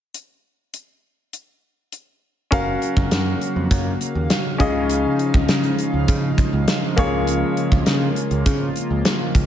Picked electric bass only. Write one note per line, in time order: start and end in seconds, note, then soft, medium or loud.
2.52 2.74 F#1 medium
2.97 3.08 F#1 medium
3.11 3.34 F#2 medium
3.56 3.67 F2 medium
3.71 3.93 F#2 loud
4.15 4.26 D#2 medium
4.60 5.04 C#2 medium
5.34 5.45 C#2 medium
5.49 5.71 C#3 medium
5.94 6.05 C#2 medium
6.08 6.31 C#3 loud
6.53 6.64 C#2 medium
6.98 7.42 C#2 medium
7.72 7.83 C#2 loud
7.87 8.09 C#3 medium
8.31 8.42 C#2 medium
8.46 8.68 C#3 loud
8.91 9.02 C#2 medium
9.35 9.46 C#2 medium